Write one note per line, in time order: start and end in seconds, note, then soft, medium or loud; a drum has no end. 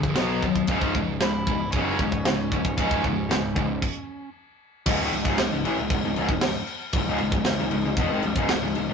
0.00 0.16 A#1 medium
0.00 0.14 G2 medium
0.00 0.14 D3 medium
0.00 kick medium
0.16 0.41 B1 medium
0.16 0.41 B2 medium
0.16 0.42 F#3 medium
0.16 0.42 B3 medium
0.16 snare loud
0.16 ride bell medium
0.42 0.68 D#2 medium
0.42 0.67 B2 medium
0.42 0.67 F#3 medium
0.42 kick medium
0.56 kick medium
0.67 0.94 C#1 medium
0.67 0.94 C#2 medium
0.67 0.94 G#2 loud
0.67 0.94 C#3 medium
0.67 kick loud
0.67 ride bell medium
0.81 kick medium
0.95 1.20 C#1 medium
0.95 1.19 C#2 medium
0.95 1.19 G#2 medium
0.95 kick medium
1.21 1.46 C#1 medium
1.21 1.45 C#2 medium
1.21 1.45 G#2 medium
1.21 1.32 E4 loud
1.21 snare loud
1.21 ride bell medium
1.34 1.70 E4 loud
1.47 1.72 C#1 medium
1.47 1.71 C#2 medium
1.47 1.71 G#2 medium
1.47 kick medium
1.72 1.98 F#1 medium
1.72 1.99 C#2 medium
1.72 4.29 C#4 medium
1.72 kick loud
1.72 ride bell medium
1.76 1.99 G#2 loud
1.76 1.99 C#3 loud
1.99 2.24 C#1 medium
1.99 2.24 C#2 medium
1.99 2.25 G#2 medium
1.99 kick medium
2.12 kick medium
2.25 2.51 C#1 medium
2.25 2.50 C#2 medium
2.25 2.50 G#2 medium
2.25 snare loud
2.25 ride bell medium
2.52 2.76 C#1 medium
2.52 2.76 C#2 medium
2.52 2.76 G#2 medium
2.52 kick medium
2.65 kick medium
2.77 3.03 C#1 medium
2.77 3.02 C#2 medium
2.77 3.02 G#2 medium
2.77 3.03 C#3 loud
2.77 kick medium
2.77 ride bell medium
2.91 kick medium
3.04 3.29 C#1 medium
3.04 3.28 C#2 medium
3.04 3.28 G#2 medium
3.04 kick medium
3.29 3.55 C#1 medium
3.29 3.53 C#2 medium
3.29 3.53 G#2 medium
3.29 snare loud
3.29 ride bell medium
3.55 3.81 C#1 medium
3.55 3.79 C#2 medium
3.55 3.79 G#2 medium
3.55 kick medium
3.82 kick medium
3.82 crash medium
4.86 4.98 C#1 medium
4.86 4.98 C#2 medium
4.86 4.99 G#2 loud
4.86 kick loud
4.86 crash loud
4.86 crash medium
4.99 5.11 D1 loud
4.99 5.11 D2 loud
4.99 5.12 A2 loud
5.12 5.24 C#1 medium
5.12 5.24 C#2 medium
5.12 5.25 G#2 medium
5.12 crash medium
5.25 5.37 C#1 loud
5.25 5.37 C#2 medium
5.25 5.38 G#2 medium
5.25 kick medium
5.38 5.50 C#1 medium
5.38 5.51 C#2 medium
5.38 5.52 G#2 medium
5.38 snare loud
5.38 crash medium
5.52 5.63 C#1 medium
5.52 5.65 C#2 medium
5.52 5.65 G#2 medium
5.64 5.76 A1 loud
5.64 5.77 A2 loud
5.64 5.77 E3 loud
5.64 crash medium
5.78 5.89 C#1 medium
5.78 5.91 C#2 medium
5.78 5.91 G#2 medium
5.90 6.02 C#1 medium
5.90 6.04 C#2 medium
5.90 6.04 G#2 medium
5.90 kick loud
5.90 crash medium
6.04 6.15 C#1 medium
6.04 6.16 C#2 medium
6.04 6.17 G#2 medium
6.16 6.28 C#1 loud
6.16 6.29 C#2 loud
6.16 6.29 G#2 loud
6.16 crash medium
6.29 6.41 C#1 medium
6.29 6.42 C#2 medium
6.29 6.43 G#2 medium
6.29 kick medium
6.41 6.55 C#1 medium
6.41 6.56 C#2 medium
6.41 6.56 G#2 medium
6.41 snare loud
6.41 crash loud
6.67 crash medium
6.93 7.05 C#1 medium
6.93 7.08 C#2 medium
6.93 kick loud
6.93 crash medium
6.97 7.08 G#2 medium
7.07 7.19 C#1 loud
7.07 7.20 C#2 medium
7.07 7.20 G#2 loud
7.18 7.32 C#1 medium
7.18 7.32 C#2 medium
7.18 7.32 G#2 medium
7.18 crash medium
7.32 7.45 C#1 medium
7.32 7.45 C#2 medium
7.32 7.46 G#2 medium
7.32 kick medium
7.45 7.59 C#1 medium
7.45 7.58 C#2 medium
7.45 7.59 G#2 medium
7.45 snare loud
7.45 crash medium
7.60 7.71 C#1 medium
7.60 7.70 C#2 medium
7.60 7.71 G#2 medium
7.71 7.84 C#1 medium
7.71 7.84 C#2 medium
7.71 7.84 G#2 medium
7.71 crash medium
7.85 7.97 C#1 medium
7.85 7.97 C#2 medium
7.85 7.97 G#2 medium
7.97 8.09 E1 medium
7.97 8.09 E2 loud
7.97 8.09 B2 loud
7.97 kick loud
7.97 crash medium
8.10 8.23 G#1 medium
8.10 8.22 G#2 medium
8.10 8.23 D#3 loud
8.23 8.35 C#1 medium
8.23 8.35 C#2 medium
8.23 8.36 G#2 medium
8.23 crash medium
8.36 8.48 C#1 loud
8.36 8.48 C#2 medium
8.36 8.49 G#2 loud
8.36 kick medium
8.49 8.63 C#1 medium
8.49 8.61 C#2 medium
8.49 8.62 G#2 medium
8.49 snare loud
8.49 crash medium
8.62 8.76 C#1 medium
8.62 8.75 C#2 medium
8.62 8.75 G#2 medium
8.75 8.88 C#1 medium
8.75 8.88 C#2 medium
8.75 8.88 G#2 medium
8.75 crash medium
8.89 8.94 C#1 medium
8.89 8.94 C#2 medium
8.89 8.94 G#2 medium